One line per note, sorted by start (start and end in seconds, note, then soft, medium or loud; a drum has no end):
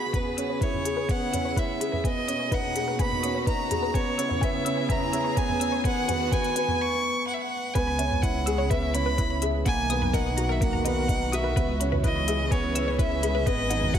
0.00 0.11 G#1 medium
0.00 0.13 D#3 medium
0.00 0.14 B3 medium
0.00 2.04 B3 medium
0.00 0.16 D#4 medium
0.00 0.16 F#4 medium
0.00 0.90 F#4 medium
0.00 0.16 G#4 medium
0.00 2.80 G#4 medium
0.00 0.17 B5 loud
0.13 2.02 C#2 medium
0.13 2.04 C#3 medium
0.13 0.37 B3 medium
0.13 0.65 B4 medium
0.13 0.18 G#5 medium
0.13 kick loud
0.13 closed hi-hat soft
0.13 mid tom medium
0.37 0.60 C#4 medium
0.37 0.40 E6 medium
0.37 closed hi-hat medium
0.49 0.54 C#5 medium
0.61 0.84 E4 medium
0.61 0.64 B4 medium
0.61 1.12 C#5 medium
0.61 kick medium
0.61 closed hi-hat soft
0.73 mid tom medium
0.85 1.07 G#4 medium
0.85 0.89 B5 medium
0.85 closed hi-hat medium
0.97 1.01 B4 medium
1.01 2.05 E4 medium
1.09 1.31 B3 medium
1.09 1.60 F#5 medium
1.09 1.13 G#5 medium
1.09 kick loud
1.09 closed hi-hat soft
1.33 1.56 C#4 medium
1.33 1.35 E6 medium
1.33 closed hi-hat medium
1.33 mid tom medium
1.45 1.49 C#5 medium
1.56 1.79 E4 medium
1.56 1.59 B4 medium
1.56 2.07 E5 medium
1.56 kick medium
1.56 closed hi-hat soft
1.80 2.02 G#4 medium
1.80 1.85 B5 medium
1.80 closed hi-hat medium
1.92 1.96 B4 medium
1.92 mid tom medium
2.04 3.95 B2 medium
2.04 2.27 B3 medium
2.04 2.56 D#5 loud
2.04 2.08 G#5 medium
2.04 kick medium
2.04 closed hi-hat soft
2.22 3.95 A#3 medium
2.28 2.50 C#4 medium
2.28 2.30 D#6 medium
2.28 closed hi-hat medium
2.40 2.44 C#5 medium
2.51 2.74 D#4 medium
2.51 3.95 D#4 medium
2.51 2.54 B4 medium
2.51 3.01 F#5 loud
2.51 kick loud
2.51 closed hi-hat soft
2.51 mid tom medium
2.75 2.97 G#4 medium
2.75 2.80 B5 medium
2.75 closed hi-hat medium
2.88 4.71 F#4 medium
2.88 2.92 B4 medium
2.99 3.22 B3 medium
2.99 3.03 G#5 medium
2.99 3.45 B5 loud
2.99 kick loud
2.99 closed hi-hat soft
3.12 mid tom medium
3.23 3.46 C#4 medium
3.23 3.26 D#6 medium
3.23 closed hi-hat medium
3.35 3.39 C#5 medium
3.46 3.69 D#4 medium
3.46 3.49 B4 loud
3.46 3.97 A#5 loud
3.46 kick loud
3.46 closed hi-hat soft
3.71 3.93 G#4 medium
3.71 3.75 B5 medium
3.71 closed hi-hat medium
3.71 mid tom medium
3.82 3.87 B4 medium
3.94 5.83 C#2 medium
3.94 5.85 C#3 medium
3.94 4.17 B3 medium
3.94 4.45 C#5 loud
3.94 3.99 G#5 medium
3.94 kick medium
3.94 closed hi-hat soft
4.13 6.80 B3 medium
4.18 4.40 C#4 medium
4.18 4.20 E6 medium
4.18 closed hi-hat medium
4.22 5.85 E4 medium
4.29 4.34 C#5 medium
4.29 mid tom medium
4.39 4.65 B3 medium
4.39 6.80 G#4 medium
4.39 4.46 G#5 medium
4.39 kick loud
4.39 closed hi-hat soft
4.44 4.92 E5 loud
4.65 4.88 C#4 medium
4.65 4.68 E6 loud
4.65 closed hi-hat medium
4.77 4.82 C#5 medium
4.89 5.12 B3 medium
4.89 4.94 G#5 medium
4.89 5.39 A#5 loud
4.89 kick loud
4.89 closed hi-hat soft
4.89 mid tom medium
5.13 5.35 C#4 medium
5.13 5.16 E6 medium
5.13 closed hi-hat medium
5.24 5.29 C#5 medium
5.36 5.60 B3 medium
5.36 5.41 G#5 medium
5.36 5.85 G#5 loud
5.36 kick medium
5.36 closed hi-hat soft
5.49 mid tom medium
5.60 5.83 C#4 medium
5.60 5.63 E6 loud
5.60 closed hi-hat medium
5.72 5.77 C#5 medium
5.84 6.80 D#3 medium
5.84 6.07 B3 medium
5.84 6.35 F#5 loud
5.84 5.89 G#5 medium
5.84 kick loud
5.84 closed hi-hat soft
5.98 6.80 F#4 medium
6.08 6.30 B3 medium
6.08 6.13 G#5 medium
6.08 closed hi-hat medium
6.08 mid tom medium
6.32 6.54 B3 medium
6.32 6.36 G#5 medium
6.32 6.83 G#5 loud
6.32 kick loud
6.32 closed hi-hat soft
6.44 closed hi-hat soft
6.56 6.78 B3 medium
6.56 6.60 G#5 medium
6.56 closed hi-hat medium
6.68 mid tom medium
6.81 7.27 C#6 loud
7.27 7.35 F#5 medium
7.34 7.43 E5 medium
7.41 7.75 F#5 medium
7.74 9.63 C#2 medium
7.74 9.66 C#3 medium
7.74 7.98 B3 medium
7.74 7.79 B4 medium
7.74 8.23 G#5 loud
7.74 kick medium
7.74 closed hi-hat soft
7.87 7.90 B5 medium
7.99 8.22 C#4 medium
7.99 8.05 E5 medium
7.99 closed hi-hat medium
8.11 mid tom medium
8.22 8.37 E4 medium
8.22 8.71 F#5 medium
8.22 8.27 G#5 medium
8.22 kick loud
8.22 closed hi-hat soft
8.46 9.66 E4 medium
8.46 8.70 G#4 loud
8.46 8.49 E6 loud
8.46 closed hi-hat medium
8.58 8.63 C#5 medium
8.70 8.84 B3 medium
8.70 8.73 B4 loud
8.70 8.96 E5 loud
8.70 kick loud
8.70 closed hi-hat soft
8.94 9.08 C#4 medium
8.94 8.98 B5 medium
8.94 9.42 B5 loud
8.94 closed hi-hat medium
9.06 9.10 B4 medium
9.18 9.32 E4 medium
9.18 9.22 B4 medium
9.18 kick loud
9.18 closed hi-hat soft
9.30 9.33 B5 medium
9.42 9.65 G#4 medium
9.42 9.48 E5 medium
9.42 closed hi-hat medium
9.65 11.56 D#3 medium
9.65 9.89 A#3 medium
9.65 9.70 F#5 medium
9.65 10.16 G#5 loud
9.65 kick loud
9.65 closed hi-hat soft
9.90 10.13 B3 medium
9.90 9.92 D#6 loud
9.90 closed hi-hat medium
10.02 10.06 B4 medium
10.02 mid tom medium
10.13 10.36 D#4 medium
10.13 10.16 A#4 loud
10.13 10.53 F#5 loud
10.13 kick loud
10.13 closed hi-hat soft
10.37 10.60 F#4 medium
10.37 10.41 A#5 medium
10.37 closed hi-hat medium
10.49 12.33 F#4 medium
10.49 10.53 A#4 medium
10.49 11.57 A#4 medium
10.49 10.65 E5 medium
10.61 10.84 A#3 medium
10.61 10.65 A#4 medium
10.61 10.86 F#5 loud
10.61 kick loud
10.61 closed hi-hat soft
10.73 10.76 A#5 medium
10.73 mid tom medium
10.85 11.08 B3 medium
10.85 10.91 D#5 medium
10.85 11.36 F#5 loud
10.85 closed hi-hat medium
11.08 11.23 D#4 medium
11.08 11.13 F#5 medium
11.08 kick loud
11.08 closed hi-hat soft
11.32 11.55 F#4 loud
11.32 11.81 E5 medium
11.32 11.35 D#6 loud
11.32 closed hi-hat medium
11.44 11.48 B4 medium
11.56 13.44 C#2 medium
11.56 13.47 E3 medium
11.56 11.70 B3 medium
11.56 11.59 B4 loud
11.56 kick loud
11.56 closed hi-hat soft
11.66 13.99 C#4 medium
11.80 11.94 C#4 medium
11.80 11.84 B5 medium
11.80 closed hi-hat medium
11.92 11.96 B4 medium
11.92 mid tom medium
12.04 12.18 E4 medium
12.04 12.08 B4 medium
12.04 12.53 D#5 loud
12.04 kick loud
12.04 closed hi-hat soft
12.09 13.99 G#4 medium
12.16 12.19 B5 medium
12.28 12.51 G#4 medium
12.28 12.34 E5 medium
12.28 closed hi-hat medium
12.43 13.99 B4 medium
12.51 12.74 B3 medium
12.51 12.98 C#5 medium
12.51 12.56 G#5 medium
12.51 kick loud
12.51 closed hi-hat soft
12.75 12.98 C#4 medium
12.75 12.78 E6 loud
12.75 closed hi-hat medium
12.88 12.92 C#5 medium
12.99 13.22 E4 medium
12.99 13.02 B4 loud
12.99 13.48 E5 loud
12.99 kick loud
12.99 closed hi-hat soft
13.23 13.46 G#4 medium
13.23 13.27 B5 medium
13.23 closed hi-hat medium
13.35 13.39 B4 medium
13.46 13.99 G#1 medium
13.46 13.99 F#3 medium
13.46 13.69 B3 medium
13.46 13.51 B4 medium
13.46 13.96 D#5 loud
13.46 kick loud
13.46 closed hi-hat soft
13.58 13.61 B5 medium
13.70 13.93 D#4 medium
13.70 13.77 F#5 medium
13.70 closed hi-hat medium
13.77 13.99 D#3 medium
13.83 mid tom medium
13.94 13.99 F#4 medium
13.94 13.99 F#5 loud
13.94 13.99 G#5 medium
13.94 kick loud
13.94 closed hi-hat soft